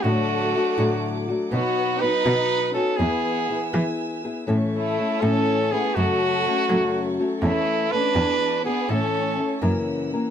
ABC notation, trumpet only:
X:1
M:6/8
L:1/8
Q:3/8=81
K:A
V:1 name="Trumpet"
F4- F z | F2 B3 A | G3 z3 | z E2 A2 G |
F4- F z | E2 B3 G | A3 z3 |]